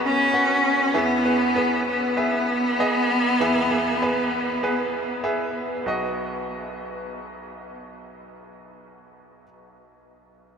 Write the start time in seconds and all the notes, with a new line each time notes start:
Already playing: B1 B2 B3 F#4 G#4 A#4 B4 D#5
0.05 C#4
0.33 B3 F#4 F#5
0.94 E2 E3 B3 G#4 E5
1.25 B3 G#4 B4
1.56 B3 G#4 B4
1.89 B3
2.17 B3 G#4 E5
2.79 B3 G#4 D#5
3.40 E2 E3 B3 G#4 E5
3.71 B3 G#4 E5
4.02 B3 G#4 B4
4.63 B3 G#4 B4
5.24 B3 G#4 E5
5.84 B1 B3 F#4
5.88 D#5